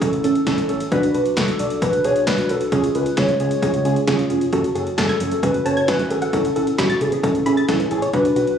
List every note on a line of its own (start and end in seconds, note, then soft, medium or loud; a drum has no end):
0.01 0.13 C#4 medium
0.01 0.13 E4 medium
0.01 0.13 A4 medium
0.01 0.69 A4 medium
0.01 kick loud
0.01 closed hi-hat medium
0.13 0.23 A1 loud
0.13 closed hi-hat soft
0.24 0.34 A1 loud
0.24 0.36 C#4 medium
0.24 0.36 E4 medium
0.24 0.36 A4 loud
0.24 closed hi-hat medium
0.35 closed hi-hat soft
0.47 0.57 A1 loud
0.47 0.58 C#4 medium
0.47 0.58 E4 medium
0.47 0.58 A4 loud
0.47 kick loud
0.47 snare loud
0.47 closed hi-hat medium
0.58 closed hi-hat medium
0.69 0.79 A1 loud
0.69 0.81 C#4 medium
0.69 0.81 E4 medium
0.69 0.81 A4 loud
0.69 closed hi-hat medium
0.80 closed hi-hat medium
0.92 1.02 B1 loud
0.92 1.03 D4 loud
0.92 1.03 F#4 loud
0.92 1.03 B4 loud
0.92 kick loud
0.92 closed hi-hat medium
1.03 closed hi-hat medium
1.14 1.25 B1 medium
1.14 1.26 D4 medium
1.14 1.26 F#4 medium
1.14 1.26 B4 medium
1.14 closed hi-hat medium
1.26 closed hi-hat soft
1.37 1.47 B1 loud
1.37 1.48 D4 medium
1.37 1.48 F#4 medium
1.37 1.83 A4 loud
1.37 1.48 B4 medium
1.37 kick loud
1.37 snare loud
1.37 closed hi-hat medium
1.48 closed hi-hat soft
1.59 1.70 B1 loud
1.59 1.71 D4 medium
1.59 1.71 F#4 medium
1.59 1.71 D5 medium
1.59 closed hi-hat medium
1.70 closed hi-hat medium
1.82 1.92 B1 loud
1.82 1.94 D4 medium
1.82 1.93 F#4 medium
1.82 1.94 B4 medium
1.82 2.06 B4 loud
1.82 kick loud
1.82 closed hi-hat medium
1.93 closed hi-hat soft
2.04 2.15 B1 loud
2.04 2.16 D4 medium
2.04 2.16 F#4 medium
2.04 2.16 G#4 loud
2.04 2.26 C#5 loud
2.04 closed hi-hat medium
2.16 2.26 B1 loud
2.16 closed hi-hat soft
2.27 2.37 B1 loud
2.27 2.39 D4 medium
2.27 2.39 F#4 medium
2.27 2.39 B4 loud
2.27 2.51 B4 loud
2.27 kick loud
2.27 snare loud
2.27 closed hi-hat medium
2.38 closed hi-hat medium
2.49 2.60 B1 loud
2.49 2.61 D4 medium
2.49 2.61 F#4 medium
2.49 2.74 A4 loud
2.49 2.61 B4 medium
2.49 closed hi-hat medium
2.61 closed hi-hat medium
2.72 2.83 C#2 loud
2.72 2.84 C#4 medium
2.72 2.84 F4 medium
2.72 2.96 G#4 loud
2.72 2.84 G#4 loud
2.72 kick loud
2.72 closed hi-hat medium
2.84 closed hi-hat medium
2.95 3.05 C#2 loud
2.95 3.06 C#4 medium
2.95 3.06 F4 medium
2.95 3.06 B4 medium
2.95 3.19 B4 loud
2.95 closed hi-hat medium
3.06 closed hi-hat soft
3.17 3.28 C#2 medium
3.17 3.29 C#4 medium
3.17 3.29 F4 medium
3.17 3.29 G#4 medium
3.17 3.40 C#5 loud
3.17 kick loud
3.17 snare loud
3.17 closed hi-hat medium
3.29 closed hi-hat soft
3.40 3.50 C#2 loud
3.40 3.52 C#4 medium
3.40 3.52 F4 medium
3.40 3.52 G#4 medium
3.40 4.26 C#5 loud
3.40 closed hi-hat medium
3.51 closed hi-hat medium
3.62 3.74 C#4 medium
3.62 3.74 F4 medium
3.62 3.74 G#4 medium
3.62 kick loud
3.62 closed hi-hat medium
3.74 3.84 C#2 medium
3.74 closed hi-hat soft
3.85 3.95 C#2 loud
3.85 3.96 C#4 medium
3.85 3.96 F4 medium
3.85 3.96 G#4 medium
3.85 closed hi-hat medium
3.96 closed hi-hat soft
4.07 4.18 C#2 loud
4.07 4.19 C#4 loud
4.07 4.19 F4 loud
4.07 4.19 G#4 loud
4.07 kick loud
4.07 snare loud
4.07 closed hi-hat medium
4.19 closed hi-hat medium
4.30 4.40 F1 medium
4.30 4.42 C#4 medium
4.30 4.42 F4 medium
4.30 4.42 G#4 medium
4.30 closed hi-hat medium
4.41 closed hi-hat medium
4.53 4.63 F#1 loud
4.53 4.60 F#3 medium
4.53 4.64 C#4 loud
4.53 4.64 F#4 loud
4.53 4.64 A4 loud
4.53 kick loud
4.53 closed hi-hat medium
4.64 closed hi-hat medium
4.75 4.86 F#1 loud
4.75 4.87 C#4 medium
4.75 4.87 F#4 medium
4.75 4.83 G#4 medium
4.75 4.87 A4 medium
4.75 closed hi-hat medium
4.87 closed hi-hat soft
4.98 5.08 F#1 loud
4.98 5.09 C#4 medium
4.98 5.09 F#4 medium
4.98 5.09 G#4 medium
4.98 5.40 A4 loud
4.98 5.06 A5 medium
4.98 kick loud
4.98 snare loud
4.98 closed hi-hat medium
5.09 5.17 G#6 medium
5.09 closed hi-hat soft
5.20 5.31 F#1 loud
5.20 5.28 F#3 medium
5.20 5.32 C#4 medium
5.20 5.32 F#4 medium
5.20 5.32 A4 medium
5.20 closed hi-hat medium
5.31 5.39 A3 medium
5.31 closed hi-hat medium
5.43 5.53 F#1 loud
5.43 5.54 C#4 medium
5.43 5.54 F#4 medium
5.43 5.51 G#4 medium
5.43 5.55 A4 medium
5.43 5.67 B4 loud
5.43 kick loud
5.43 closed hi-hat medium
5.54 closed hi-hat soft
5.65 5.76 F#1 loud
5.65 5.77 C#4 medium
5.65 5.77 F#4 medium
5.65 5.77 A4 medium
5.65 5.89 C#5 loud
5.65 5.73 A5 medium
5.65 closed hi-hat medium
5.77 5.87 F#1 medium
5.77 5.85 G#6 medium
5.77 closed hi-hat soft
5.88 5.98 F#1 loud
5.88 5.96 F#3 medium
5.88 6.00 C#4 medium
5.88 6.00 F#4 medium
5.88 6.12 B4 loud
5.88 6.00 B4 loud
5.88 kick loud
5.88 snare loud
5.88 closed hi-hat medium
5.99 6.07 A3 medium
5.99 closed hi-hat medium
6.10 6.21 G#1 medium
6.10 6.22 C#4 medium
6.10 6.22 F#4 medium
6.10 6.18 G#4 medium
6.10 6.80 A4 loud
6.10 6.22 A4 medium
6.10 closed hi-hat medium
6.22 6.30 F#5 medium
6.22 closed hi-hat medium
6.33 6.43 A1 loud
6.33 6.41 C#3 medium
6.33 6.45 C#4 medium
6.33 6.45 E4 medium
6.33 6.45 A4 loud
6.33 kick loud
6.33 closed hi-hat medium
6.45 closed hi-hat medium
6.56 6.66 A1 medium
6.56 6.67 C#4 medium
6.56 6.67 E4 medium
6.56 6.67 A4 medium
6.56 6.64 A4 medium
6.56 closed hi-hat medium
6.67 closed hi-hat soft
6.78 6.89 A1 loud
6.78 6.90 C#4 medium
6.78 6.90 E4 medium
6.78 7.02 F#4 medium
6.78 6.90 A4 medium
6.78 6.86 B5 medium
6.78 kick loud
6.78 snare loud
6.78 closed hi-hat medium
6.90 6.97 A6 medium
6.90 closed hi-hat soft
7.01 7.11 A1 loud
7.01 7.09 C#3 medium
7.01 7.12 C#4 medium
7.01 7.12 E4 medium
7.01 7.23 G#4 medium
7.01 7.12 A4 medium
7.01 closed hi-hat medium
7.12 7.20 B3 medium
7.12 closed hi-hat medium
7.23 7.35 C#4 medium
7.23 7.35 E4 medium
7.23 7.87 A4 medium
7.23 7.31 A4 medium
7.23 7.35 A4 medium
7.23 kick loud
7.23 closed hi-hat medium
7.35 7.45 A1 loud
7.35 closed hi-hat soft
7.46 7.56 A1 medium
7.46 7.58 C#4 medium
7.46 7.58 E4 medium
7.46 7.58 G#4 medium
7.46 7.54 B5 medium
7.46 closed hi-hat medium
7.57 7.65 A6 medium
7.57 closed hi-hat soft
7.68 7.79 A1 loud
7.68 7.76 C#3 medium
7.68 7.80 C#4 medium
7.68 7.80 E4 medium
7.68 7.80 A4 loud
7.68 kick loud
7.68 snare loud
7.68 closed hi-hat medium
7.80 7.87 B3 medium
7.80 closed hi-hat medium
7.91 8.01 A1 loud
7.91 8.03 C#4 medium
7.91 8.03 E4 medium
7.91 8.03 G#4 loud
7.91 7.99 A4 medium
7.91 closed hi-hat medium
8.02 8.10 C#5 loud
8.02 closed hi-hat medium
8.13 8.24 B1 loud
8.13 8.21 D3 medium
8.13 8.25 D4 medium
8.13 8.25 F#4 medium
8.13 8.25 B4 loud
8.13 8.58 B4 loud
8.13 kick loud
8.13 closed hi-hat medium
8.25 closed hi-hat medium
8.36 8.46 B1 loud
8.36 8.48 D4 medium
8.36 8.44 F#4 medium
8.36 8.48 F#4 medium
8.36 8.48 B4 medium
8.36 closed hi-hat medium
8.47 closed hi-hat soft